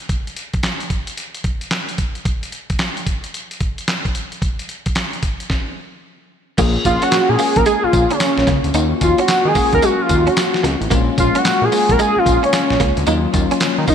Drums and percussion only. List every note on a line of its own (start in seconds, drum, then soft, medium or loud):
0.09 kick loud
0.09 closed hi-hat medium
0.27 closed hi-hat medium
0.37 closed hi-hat medium
0.53 kick medium
0.53 closed hi-hat medium
0.63 snare loud
0.63 clap medium
0.63 closed hi-hat medium
0.80 closed hi-hat soft
0.90 kick medium
0.90 closed hi-hat medium
1.07 closed hi-hat medium
1.17 closed hi-hat medium
1.35 closed hi-hat soft
1.44 kick medium
1.44 closed hi-hat medium
1.61 closed hi-hat soft
1.71 snare loud
1.71 clap medium
1.71 closed hi-hat medium
1.89 closed hi-hat soft
1.98 kick medium
1.98 closed hi-hat medium
2.15 closed hi-hat soft
2.25 kick loud
2.25 closed hi-hat medium
2.43 closed hi-hat medium
2.52 closed hi-hat medium
2.70 kick medium
2.70 closed hi-hat medium
2.79 snare loud
2.79 clap medium
2.79 closed hi-hat medium
2.97 closed hi-hat soft
3.07 kick medium
3.07 closed hi-hat medium
3.24 closed hi-hat medium
3.34 closed hi-hat medium
3.51 closed hi-hat soft
3.60 kick medium
3.60 closed hi-hat medium
3.78 closed hi-hat medium
3.88 snare loud
3.88 clap medium
3.88 closed hi-hat medium
4.05 kick medium
4.05 closed hi-hat soft
4.15 closed hi-hat medium
4.32 closed hi-hat soft
4.42 kick loud
4.42 closed hi-hat medium
4.59 closed hi-hat medium
4.69 closed hi-hat medium
4.86 kick medium
4.86 closed hi-hat medium
4.95 snare loud
4.95 clap medium
4.95 closed hi-hat medium
5.13 closed hi-hat soft
5.23 kick medium
5.23 closed hi-hat medium
5.40 closed hi-hat medium
5.50 kick loud
5.50 snare medium
6.58 kick loud
6.58 closed hi-hat medium
6.58 crash loud
6.58 tambourine medium
6.85 kick medium
6.85 closed hi-hat medium
6.85 tambourine medium
7.02 closed hi-hat medium
7.12 snare loud
7.12 clap medium
7.12 closed hi-hat medium
7.12 tambourine medium
7.39 open hi-hat medium
7.39 tambourine medium
7.56 kick loud
7.56 closed hi-hat medium
7.66 closed hi-hat medium
7.66 tambourine medium
7.93 kick loud
7.93 closed hi-hat medium
7.93 tambourine medium
8.11 closed hi-hat medium
8.20 snare loud
8.20 clap loud
8.20 closed hi-hat medium
8.20 tambourine medium
8.38 snare medium
8.47 kick loud
8.47 snare medium
8.47 closed hi-hat medium
8.64 closed hi-hat medium
8.74 closed hi-hat medium
8.74 tambourine medium
9.01 kick medium
9.01 closed hi-hat medium
9.01 tambourine medium
9.18 closed hi-hat medium
9.28 snare loud
9.28 clap medium
9.28 closed hi-hat medium
9.28 tambourine medium
9.55 kick medium
9.55 open hi-hat medium
9.55 tambourine medium
9.73 kick loud
9.73 closed hi-hat medium
9.82 closed hi-hat medium
9.82 tambourine medium
10.09 kick medium
10.09 closed hi-hat medium
10.09 tambourine medium
10.27 closed hi-hat medium
10.37 snare loud
10.37 clap medium
10.37 closed hi-hat medium
10.37 tambourine loud
10.54 snare medium
10.64 snare medium
10.64 closed hi-hat medium
10.82 closed hi-hat medium
10.91 kick loud
10.91 closed hi-hat medium
10.91 tambourine medium
11.18 kick medium
11.18 closed hi-hat medium
11.18 tambourine medium
11.35 closed hi-hat medium
11.45 snare loud
11.45 clap loud
11.45 closed hi-hat medium
11.45 tambourine medium
11.72 open hi-hat medium
11.72 tambourine medium
11.89 kick loud
11.89 closed hi-hat medium
11.99 closed hi-hat medium
11.99 tambourine medium
12.26 kick loud
12.26 closed hi-hat medium
12.26 tambourine medium
12.44 closed hi-hat medium
12.53 snare loud
12.53 clap loud
12.53 closed hi-hat medium
12.53 tambourine loud
12.70 snare medium
12.80 kick loud
12.80 snare medium
12.80 closed hi-hat medium
12.97 closed hi-hat medium
13.07 closed hi-hat medium
13.07 tambourine medium
13.34 kick medium
13.34 closed hi-hat medium
13.34 tambourine medium
13.51 closed hi-hat medium
13.60 snare loud
13.60 clap medium
13.60 closed hi-hat medium
13.60 tambourine medium
13.88 kick medium
13.88 open hi-hat medium
13.88 tambourine medium